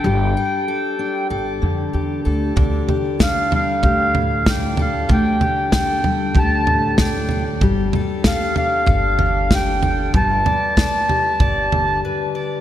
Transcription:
<<
  \new Staff \with { instrumentName = "Accordion" } { \time 4/4 \key g \mixolydian \tempo 4 = 95 g''2 r2 | r4 f''8 f''4. g''8 f''8 | g''4 g''4 a''4 g''8. r16 | r4 f''8 f''4. g''4 |
a''2. r4 | }
  \new Staff \with { instrumentName = "Steel-string acoustic guitar" } { \time 4/4 \key g \mixolydian << { <g' a'>8 a'8 a'4 a'4 g'8 a'8 | d'8 g'8 a'4 g'4 d'8 a'8 | d'8 g'8 a'4 g'4 d'8 a'8 | g'8 a'8 a'4 a'4 g'8 a'8 |
b'8 d''8 d''4 d''4 b'8 d''8 | } \\ { g4. d'4 d4. | d4. g4 a,4. | d4. g4 a,4. | g4. d'4 d4. |
g4. g'4 d4. | } >> }
  \new Staff \with { instrumentName = "Upright bass" } { \clef bass \time 4/4 \key g \mixolydian g,,8 r4. g,,8 f,8 e,8 d,8 | d,8 r4. d,2 | d,8 r4. d,2 | g,,8 r4. g,,2 |
g,,8 r4. g,,4 r4 | }
  \new DrumStaff \with { instrumentName = "Drums" } \drummode { \time 4/4 r4 r4 r4 r4 | <bd tomfh>8 tomfh8 <bd sn tomfh>8 tomfh8 <bd tomfh>8 tomfh8 <bd sn tomfh>8 tomfh8 | <bd tomfh>8 tomfh8 <bd sn tomfh>8 tomfh8 <bd tomfh>8 tomfh8 <bd sn tomfh>8 tomfh8 | <bd tomfh>8 tomfh8 <bd sn tomfh>8 tomfh8 <bd tomfh>8 tomfh8 <bd sn tomfh>8 tomfh8 |
<bd tomfh>8 tomfh8 <bd sn tomfh>8 tomfh8 <bd tomfh>8 tomfh8 r4 | }
>>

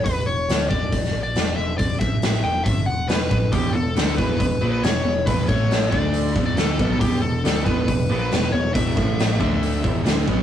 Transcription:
<<
  \new Staff \with { instrumentName = "Lead electric guitar" } { \time 4/4 \key a \mixolydian \tempo 4 = 138 b'8 cis''4 d''4~ d''16 d''8. e''8 | d''8 e''4 g''8 e''8 fis''8 b'4 | g'8 a'4 b'4~ b'16 b'16 cis''4 | b'8 cis''4 d''4~ d''16 d''16 a'4 |
g'8 a'4 b'4~ b'16 b'8. cis''8 | e''2. r4 | }
  \new Staff \with { instrumentName = "Distorted electric guitar" } { \clef bass \time 4/4 \key a \mixolydian r1 | r1 | <e, b, e>8 <e, b,>8 <d a d'>8 <e, b, e>8 <e, b,>8 <ais, f ais>8 <e, b,>8 <e, b,>8 | <e, b, e>8 <a, e a>4 <d a d'>4 <e, b, e>8 <d a d'>8 <b, fis b>8 |
<e, b, e>8 <e, b,>8 <d a d'>8 <e, b, e>8 <e, b,>8 <ais, f ais>8 <e, b,>8 <e, b,>8 | <e, b, e>8 <a, e a>4 <d a d'>4 <e, b, e>8 <d a d'>8 <b, fis b>8 | }
  \new Staff \with { instrumentName = "Distorted electric guitar" } { \clef bass \time 4/4 \key a \mixolydian r1 | r1 | <e, b, e>8 <e, b,>8 <d a d'>8 <e, b, e>8 <e, b,>8 <ais, f ais>8 <e, b,>8 <e, b,>8 | <e, b, e>8 <a, e a>4 <d a d'>4 <e, b, e>8 <d a d'>8 <b, fis b>8 |
<e, b, e>8 <e, b,>8 <d a d'>8 <e, b, e>8 <e, b,>8 <ais, f ais>8 <e, b,>8 <e, b,>8 | <e, b, e>8 <a, e a>4 <d a d'>4 <e, b, e>8 <d a d'>8 <b, fis b>8 | }
  \new Staff \with { instrumentName = "Picked electric bass" } { \clef bass \time 4/4 \key a \mixolydian e,,8 e,,8 d,8 e,,8 e,,8 ais,,8 e,,8 e,,8 | e,,8 a,,4 e,,8 g,,8 e,,8 e,,8 a,,8 | e,,8 e,,8 d,8 e,,8 e,,8 ais,,8 e,,8 e,,8 | e,,8 a,,4 d,4 e,,8 d,8 b,,8 |
e,,8 e,,8 d,8 e,,8 e,,8 ais,,8 e,,8 e,,8 | e,,8 a,,4 d,4 e,,8 d,8 b,,8 | }
  \new DrumStaff \with { instrumentName = "Drums" } \drummode { \time 4/4 <hho bd>4 <hho sn>8 bd8 <hho bd>16 sn8. <hho sn>4 | <hho bd>8 bd8 <hho sn>4 <hho bd>4 <hho sn>8 bd8 | <hho bd>4 <hho sn>8 bd8 <hho bd>4 <hho sn>4 | <hho bd>8 bd8 <hho sn>8 bd8 hho8 bd8 <hho sn>8 bd8 |
<hho bd>4 <hho sn>8 bd8 <hho bd>4 <hho sn>4 | <hho bd>8 bd8 <hho sn>8 bd8 hho8 bd8 <hho sn>8 bd8 | }
>>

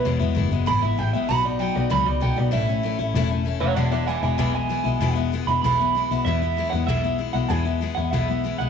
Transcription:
<<
  \new Staff \with { instrumentName = "Clean electric guitar" } { \time 4/4 \key e \major \tempo 4 = 193 r2 b''8 e''8 g''8 e''8 | b''8 d''8 g''8 d''8 b''8 d''8 g''8 d''8 | e''2. r8 <cis'' fis''>8 | <d'' fis''>8 <d'' fis''>8 <e'' gis''>8 <e'' gis''>8 <e'' gis''>8 gis''4.~ |
gis''8 r4 b''8 b''2 | e''4. fis''8 e''4 r8 fis''8 | gis''4. fis''8 e''4. fis''8 | }
  \new Staff \with { instrumentName = "Steel-string acoustic guitar" } { \time 4/4 \key e \major <e, b, e gis b e'>8 <e gis b e'>8 <e gis b e'>8 <e gis b e'>8 <e, b, e gis b e'>8 <e gis b e'>8 <e gis b e'>8 <e gis b e'>8 | <b, fis b dis' fis'>8 <b dis' fis'>8 <fis b dis' fis'>8 <b dis' fis'>8 <b, fis b dis' fis'>8 <b dis' fis'>8 <fis b dis' fis'>8 <b dis' fis'>8 | <a, e a cis' e'>8 <a cis' e'>8 <e a cis' e'>8 <a cis' e'>8 <a, e a cis' e'>8 <a cis' e'>8 <e a cis' e'>8 <a cis' e'>8 | <e, b, e gis b e'>8 <e gis b e'>8 <e gis b e'>8 <e gis b e'>8 <e, b, e gis b e'>8 <e gis b e'>8 <e gis b e'>8 <e gis b e'>8 |
<e, b, e gis b e'>8 <e gis b e'>8 <e gis b e'>8 <e gis b e'>8 <e, b, e gis b e'>8 <e gis b e'>8 <e gis b e'>8 <e gis b e'>8 | <e, b, e gis b e'>8 <e gis b e'>8 <e gis b e'>8 <e gis b e'>8 <e, b, e gis b e'>8 <e gis b e'>8 <e gis b e'>8 <e gis b e'>8 | <e, b, e gis b e'>8 <e gis b e'>8 <e gis b e'>8 <e gis b e'>8 <e, b, e gis b e'>8 <e gis b e'>8 <e gis b e'>8 <e gis b e'>8 | }
  \new Staff \with { instrumentName = "Double bass" } { \clef bass \time 4/4 \key e \major e,,8 e,,8 fis,,8 fis,,8 gis,,8 gis,,8 a,,8 a,,8 | b,,4. b,,8 cis,8 cis,8 b,,8 b,,8 | a,,4. a,,8 e,,4. e,,8 | e,,4. e,,8 b,,4. b,,8 |
e,,4. e,,8 b,,4. b,,8 | e,4. e,8 b,,4. b,,8 | e,4. e,8 b,,4. b,,8 | }
>>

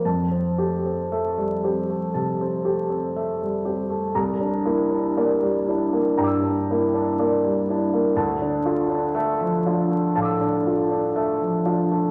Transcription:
<<
  \new Staff \with { instrumentName = "Grand piano" } { \time 4/4 \key f \major \tempo 4 = 60 << { r1 | r2 <g'' bes'' d''' e'''>2 | r2 <f'' a'' d''' e'''>2 | } \\ { a''8 g'8 e''8 g'8 a''8 g'8 e''8 g'8 | bes''8 e'8 d''8 e'8 bes''8 e'8 d''8 e'8 | a''8 f'8 e''8 f'8 a''8 f'8 e''8 f'8 | } >> }
  \new Staff \with { instrumentName = "Grand piano" } { \time 4/4 \key f \major f,16 c'16 a16 c'16 a16 g16 c'16 a16 c16 c'16 a16 c'16 a16 g16 c'16 a16 | c,16 d'16 bes16 d'16 bes16 g16 d'16 bes16 g,16 d'16 bes16 d'16 bes16 g16 d'16 bes16 | d,16 d'16 a16 d'16 a16 f16 d'16 a16 a,16 d'16 a16 d'16 a16 f16 d'16 a16 | }
>>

